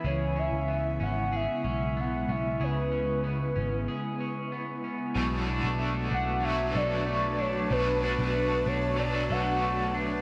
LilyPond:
<<
  \new Staff \with { instrumentName = "Soft synth lead" } { \time 4/4 \key b \dorian \tempo 4 = 94 cis''8 e''4 fis''8 e''8 e''8 fis''8 e''8 | b'2. r4 | r4. fis''8 e''8 d''4 cis''8 | b'8 b'4 cis''8 d''8 fis''4 r8 | }
  \new Staff \with { instrumentName = "Ambient pad" } { \time 4/4 \key b \dorian <cis gis b e'>1~ | <cis gis b e'>1 | <d' fis' b' a''>1~ | <d' fis' b' a''>1 | }
  \new Staff \with { instrumentName = "Clean electric guitar" } { \time 4/4 \key b \dorian <cis gis'>8 cis'8 b8 cis'8 gis'8 cis'8 b8 cis'8 | <cis gis'>8 cis'8 b8 cis'8 gis'8 cis'8 b8 cis'8 | b,8 d'8 a8 d'8 fis8 a'8 a8 d'8 | b,8 d'8 a8 d'8 fis8 a'8 a8 d'8 | }
  \new Staff \with { instrumentName = "Overdriven electric guitar" } { \time 4/4 \key b \dorian r1 | r1 | <b, fis a d' fis'>8 <a d' fis'>4. <fis a d' fis'>2 | <b, fis a d' fis'>8 <a d' fis'>4. <fis a d' fis'>2 | }
  \new Staff \with { instrumentName = "Picked electric bass" } { \clef bass \time 4/4 \key b \dorian cis,8. cis,8. gis,,8. r16 b,,4 b,,8 | cis,4. gis,,8 r2 | b,,8. b,,8. b,,4 b,,4. | b,,8. b,,8. b,,4 b,,4. | }
>>